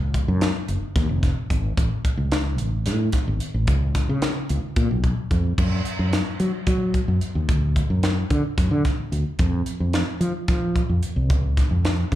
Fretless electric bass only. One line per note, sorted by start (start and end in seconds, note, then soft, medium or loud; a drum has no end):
0.00 0.19 C#2 medium
0.28 0.50 F#2 medium
0.69 0.79 F#1 medium
0.82 muted fretless electric bass stroke soft
0.96 1.07 D#2 medium
1.09 1.31 F1 medium
1.51 1.72 G#1 medium
1.78 1.88 A1 medium
2.05 muted fretless electric bass stroke soft
2.17 2.59 C#2 medium
2.59 2.88 A1 medium
2.87 3.08 A2 medium
3.28 3.38 G#1 medium
3.54 3.65 A1 medium
3.68 4.00 C#2 medium
4.09 4.31 C#3 medium
4.50 4.61 C#2 medium
4.64 muted fretless electric bass stroke soft
4.77 4.87 A#2 medium
4.91 5.12 B1 medium
5.31 5.52 F2 medium
5.58 5.80 F#2 medium
5.99 6.21 F#2 medium
6.40 6.51 F#3 medium
6.67 6.99 F#3 medium
7.08 7.19 F#2 medium
7.35 7.49 D#2 medium
7.49 7.81 D2 medium
7.90 8.22 F#2 medium
8.31 8.41 D3 medium
8.58 8.69 F#2 medium
8.71 8.82 D3 medium
8.99 muted fretless electric bass stroke soft
9.12 9.23 D2 medium
9.39 9.61 F2 medium
9.80 10.02 F2 medium
10.20 10.31 F3 medium
10.48 10.81 F3 medium
10.89 11.00 F2 medium
11.16 11.30 C2 medium
11.30 11.62 C#2 medium
11.71 12.03 F2 medium
12.12 12.15 C#3 medium